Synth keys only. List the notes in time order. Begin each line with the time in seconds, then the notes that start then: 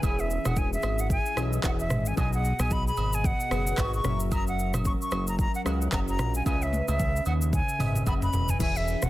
0.02 E3 C#4 G#4 E5
1.36 E3 C#4 G#4 D#5
1.45 E5
2.16 B2 B3 G#4 D#5
3.50 B2 B3 G#4 B4
4.04 F#3 C#4 A#4 E5
5.64 F#3 C#4 A#4 F#5
6.45 C#3 C#4 B4 D#5
6.54 E5
7.79 C#3 C#4 B4 D#5
7.88 E5
8.59 E3 C#4 G#4 E5